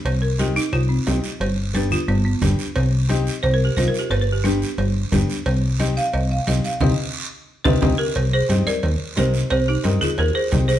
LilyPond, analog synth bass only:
\new Staff \with { instrumentName = "Analog synth bass" } { \clef bass \time 4/4 \key c \minor \tempo 4 = 178 c,2 c,4 c,8 r8 | g,,2 g,,4 g,,8 r8 | c,2 c,4 c,8 r8 | g,,2 g,,4 g,,8 r8 |
c,2 c,4 c,8 r8 | c,8 r2 c,8 c,8 r8 | c,4 g,8 r8 ees,8 r8 c,4 | c,4 g,8 r8 ees,8 r8 c,4 | }